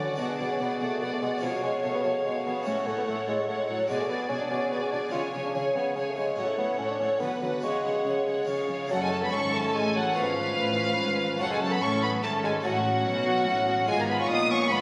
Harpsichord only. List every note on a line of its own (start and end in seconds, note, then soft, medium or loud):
0.00 0.16 D3 soft
0.00 0.13 A3 soft
0.00 0.14 F#4 soft
0.14 1.36 G#3 soft
0.14 1.37 B3 soft
0.14 1.38 F#4 soft
0.18 0.37 B2 soft
0.39 0.58 B2 soft
0.60 0.79 B2 soft
0.80 0.99 B2 soft
1.01 1.19 B2 soft
1.20 1.40 B2 soft
1.37 2.59 G#3 soft
1.37 2.60 C#4 soft
1.37 2.61 F4 soft
1.42 1.61 B2 soft
1.63 1.82 B2 soft
1.84 2.02 B2 soft
2.04 2.22 B2 soft
2.25 2.43 B2 soft
2.45 2.64 B2 soft
2.62 2.84 A2 soft
2.62 3.84 A3 soft
2.62 3.84 C#4 soft
2.62 3.85 F#4 soft
2.87 3.05 A2 soft
3.08 3.26 A2 soft
3.28 3.46 A2 soft
3.49 3.67 A2 soft
3.69 3.87 A2 soft
3.86 5.07 G#3 soft
3.86 5.09 D4 soft
3.86 5.09 F#4 soft
3.90 4.08 B2 soft
4.10 4.28 B2 soft
4.29 4.48 B2 soft
4.51 4.70 B2 soft
4.72 4.91 B2 soft
4.93 5.12 B2 soft
5.09 6.31 G#3 soft
5.09 6.32 C#4 soft
5.13 5.32 C#3 soft
5.34 5.53 C#3 soft
5.55 5.73 C#3 soft
5.76 5.94 C#3 soft
5.96 6.15 C#3 soft
6.16 6.35 C#3 soft
6.36 6.57 A2 soft
6.36 7.18 C#4 soft
6.59 6.77 A2 soft
6.79 6.98 A2 soft
7.00 7.19 A2 soft
7.18 7.40 D3 soft
7.18 7.60 B3 soft
7.18 7.62 D4 soft
7.43 7.62 D3 soft
7.59 8.42 G#3 soft
7.59 8.44 C#4 soft
7.59 8.45 F#4 soft
7.64 7.83 C#3 soft
7.84 8.03 C#3 soft
8.05 8.24 C#3 soft
8.27 8.46 C#3 soft
8.43 8.87 G#3 soft
8.43 8.86 C#4 soft
8.43 8.88 F4 soft
8.47 8.67 C#3 soft
8.69 8.88 C#3 soft
8.86 9.29 A3 medium
8.86 9.30 C#4 medium
8.86 10.12 A4 medium
8.91 9.29 F#2 medium
9.32 9.70 G#2 medium
9.75 10.12 A2 medium
10.10 10.54 G#3 medium
10.10 10.55 B3 medium
10.10 10.55 C#4 medium
10.15 10.54 G#2 medium
10.15 11.36 C#5 soft
10.58 10.96 A2 medium
11.00 11.37 G#2 medium
11.36 12.19 A3 medium
11.36 12.19 C#4 medium
11.36 12.60 C#5 medium
11.41 11.78 F#2 medium
11.82 12.19 A2 medium
12.23 12.61 G#2 medium
12.60 13.82 A3 medium
12.60 13.83 C#4 medium
12.60 13.84 C#5 medium
12.65 13.02 A2 medium
13.05 13.43 B2 medium
13.48 13.85 A2 medium
13.84 14.81 B3 medium
13.84 14.81 F4 medium
13.84 14.81 B4 medium
13.88 14.25 G#2 medium
14.30 14.66 A#2 medium
14.71 14.81 G#2 medium